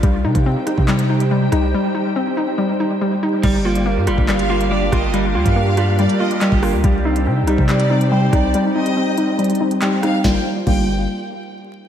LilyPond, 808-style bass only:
\new Staff \with { instrumentName = "808-style bass" } { \clef bass \time 4/4 \key g \minor \tempo 4 = 141 c,8 c16 c8 r8 c4.~ c16 c,8 | r1 | g,,4~ g,,16 g,16 g,,16 g,,4.~ g,,16 g,,8~ | g,,8 d,16 g,4. r4 g,,8 d,16 |
c,4 c16. c,16. c4.~ c16 c,8 | r1 | g,,16 r8. g,,4 r2 | }